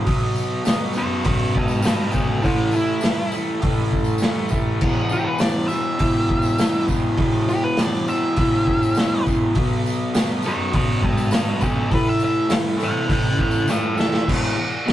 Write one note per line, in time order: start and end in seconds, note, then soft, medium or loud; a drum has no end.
0.04 0.63 B2 loud
0.04 0.64 F#3 loud
0.04 0.66 B3 loud
0.04 kick loud
0.04 open hi-hat medium
0.36 tambourine medium
0.64 0.92 B2 medium
0.64 0.93 F#3 medium
0.64 0.94 B3 loud
0.64 snare loud
0.64 open hi-hat medium
0.64 tambourine medium
0.80 tambourine soft
0.93 1.23 B2 medium
0.93 1.23 F#3 medium
0.93 1.24 B3 medium
0.93 tambourine medium
0.98 1.25 B4 loud
0.98 1.26 D5 medium
1.23 1.81 B2 loud
1.23 1.81 F#3 loud
1.23 1.83 B3 loud
1.23 1.53 B4 medium
1.23 kick loud
1.23 open hi-hat medium
1.23 tambourine soft
1.27 1.55 D5 medium
1.56 1.84 G4 medium
1.56 1.86 B4 medium
1.56 kick medium
1.68 tambourine medium
1.82 2.11 B2 medium
1.82 2.13 F#3 medium
1.82 2.13 B3 medium
1.82 snare loud
1.82 open hi-hat medium
1.82 tambourine loud
1.86 2.13 G4 medium
1.86 2.13 B4 loud
2.11 2.41 B2 medium
2.11 2.42 F#3 medium
2.11 2.42 B3 loud
2.11 2.42 F#4 medium
2.11 2.43 A4 loud
2.11 kick medium
2.11 tambourine medium
2.42 3.01 A2 loud
2.42 3.01 E3 loud
2.42 3.02 A3 loud
2.42 2.72 C#4 medium
2.42 2.74 A4 medium
2.42 kick loud
2.42 open hi-hat medium
2.42 tambourine soft
2.58 tambourine soft
2.71 tambourine medium
2.76 3.33 E4 medium
2.87 tambourine soft
3.01 3.32 A2 medium
3.01 3.34 E3 medium
3.01 3.33 A3 loud
3.01 snare loud
3.01 open hi-hat medium
3.01 tambourine medium
3.16 tambourine soft
3.32 3.59 A2 medium
3.32 3.61 E3 medium
3.32 3.62 A3 medium
3.32 tambourine medium
3.46 tambourine soft
3.60 4.21 A2 loud
3.60 4.22 E3 loud
3.60 4.23 A3 loud
3.60 kick loud
3.60 open hi-hat medium
3.60 tambourine soft
3.75 tambourine soft
3.90 kick medium
3.90 tambourine soft
4.04 tambourine medium
4.18 4.49 A2 medium
4.18 open hi-hat medium
4.18 tambourine loud
4.22 4.51 E3 medium
4.22 4.51 A3 medium
4.22 snare loud
4.34 tambourine soft
4.49 4.79 A2 medium
4.49 4.81 E3 medium
4.49 4.80 A3 loud
4.49 kick medium
4.49 tambourine medium
4.80 5.39 E2 medium
4.80 5.40 B2 medium
4.80 5.40 E3 loud
4.80 kick loud
4.80 crash loud
5.09 5.26 G4 medium
5.09 tambourine medium
5.25 5.40 B4 medium
5.38 5.68 E2 medium
5.38 5.69 B2 medium
5.38 5.71 E3 medium
5.38 5.67 D5 medium
5.38 snare loud
5.38 open hi-hat medium
5.38 tambourine loud
5.52 tambourine soft
5.68 5.97 E2 medium
5.68 5.98 B2 medium
5.68 5.98 E3 loud
5.68 6.84 E5 medium
5.68 tambourine medium
5.97 6.57 E2 loud
5.97 6.59 B2 loud
5.97 6.60 E3 loud
5.97 kick loud
5.97 open hi-hat medium
5.97 tambourine soft
6.30 kick medium
6.42 tambourine medium
6.58 6.86 E2 medium
6.58 6.88 B2 medium
6.58 6.89 E3 medium
6.58 snare loud
6.58 open hi-hat medium
6.58 tambourine loud
6.88 7.17 E2 medium
6.88 7.18 B2 medium
6.88 7.19 E3 medium
6.88 kick medium
6.88 tambourine medium
7.17 7.77 E2 medium
7.17 7.77 B2 medium
7.17 7.78 E3 loud
7.17 kick loud
7.17 open hi-hat medium
7.49 7.63 G4 loud
7.49 tambourine medium
7.64 7.80 B4 medium
7.77 8.06 E2 medium
7.77 8.08 B2 medium
7.77 8.08 E3 medium
7.77 8.08 D5 medium
7.77 snare loud
7.77 open hi-hat medium
7.77 tambourine medium
7.95 tambourine soft
8.07 8.35 E2 medium
8.07 8.35 B2 medium
8.07 8.37 E3 medium
8.07 9.23 E5 medium
8.07 tambourine medium
8.36 8.96 E2 loud
8.36 8.97 B2 loud
8.36 8.99 E3 loud
8.36 kick loud
8.36 open hi-hat medium
8.36 tambourine soft
8.67 kick medium
8.83 tambourine medium
8.95 9.24 E2 medium
8.95 9.26 B2 medium
8.95 snare loud
8.95 open hi-hat medium
8.95 tambourine loud
9.00 9.27 E3 medium
9.25 9.53 E2 medium
9.25 9.53 B2 medium
9.25 9.55 E3 loud
9.25 kick medium
9.25 tambourine medium
9.54 10.13 B2 medium
9.54 10.14 F#3 loud
9.54 10.15 B3 loud
9.54 kick loud
9.54 open hi-hat medium
9.86 tambourine medium
10.14 10.43 B2 medium
10.14 10.44 F#3 medium
10.14 10.45 B3 medium
10.14 snare loud
10.14 open hi-hat medium
10.14 tambourine loud
10.29 tambourine soft
10.42 10.71 B2 medium
10.42 10.73 F#3 medium
10.42 10.74 B3 medium
10.42 10.74 B4 medium
10.42 tambourine medium
10.48 10.74 D5 loud
10.72 11.31 B2 loud
10.72 11.32 F#3 loud
10.72 11.33 B3 loud
10.72 11.02 B4 medium
10.72 kick loud
10.72 open hi-hat medium
10.72 tambourine soft
10.77 11.04 D5 loud
11.03 11.30 G4 medium
11.03 11.32 B4 medium
11.03 kick medium
11.18 tambourine medium
11.31 11.59 B2 medium
11.31 11.60 F#3 medium
11.31 11.61 B3 medium
11.31 snare loud
11.31 open hi-hat medium
11.31 tambourine medium
11.35 11.61 G4 medium
11.35 11.63 B4 loud
11.60 11.89 B2 medium
11.60 11.89 F#3 loud
11.60 11.89 B3 medium
11.60 11.89 F#4 medium
11.60 11.91 A4 loud
11.60 kick medium
11.60 tambourine medium
11.91 12.47 A2 medium
11.91 12.49 E3 loud
11.91 12.50 A3 loud
11.91 12.07 B4 medium
11.91 kick loud
11.91 open hi-hat medium
12.06 12.22 E5 loud
12.06 tambourine soft
12.20 tambourine medium
12.24 12.51 E5 loud
12.49 12.76 A2 medium
12.49 12.77 E3 medium
12.49 12.78 A3 medium
12.49 snare loud
12.49 open hi-hat medium
12.49 tambourine loud
12.77 13.05 A2 medium
12.77 13.06 E3 medium
12.77 13.07 A3 medium
12.77 tambourine medium
12.83 13.11 E5 medium
12.83 13.10 G5 medium
13.06 13.66 A2 loud
13.06 13.67 E3 loud
13.06 13.68 A3 loud
13.06 kick loud
13.06 open hi-hat medium
13.06 tambourine soft
13.12 13.39 E5 medium
13.12 13.39 G5 loud
13.37 kick medium
13.37 tambourine soft
13.41 13.67 E5 medium
13.41 13.69 G5 medium
13.51 tambourine medium
13.67 13.93 A2 medium
13.67 13.95 E3 medium
13.67 13.96 A3 loud
13.67 13.96 C#5 medium
13.67 13.98 E5 loud
13.67 snare medium
13.67 tambourine medium
13.82 tambourine soft
13.94 14.24 A2 medium
13.94 14.24 E3 medium
13.94 14.25 A3 medium
13.94 tambourine medium
13.99 14.28 E5 loud
13.99 snare loud
14.14 snare medium
14.26 14.54 E2 medium
14.26 14.54 B2 medium
14.26 14.56 E3 loud
14.26 kick loud
14.26 crash loud
14.26 crash medium
14.56 14.80 E2 medium
14.56 14.80 B2 medium
14.86 14.93 B2 loud
14.86 14.93 F#3 medium
14.86 14.93 B3 loud
14.86 snare loud
14.86 crash medium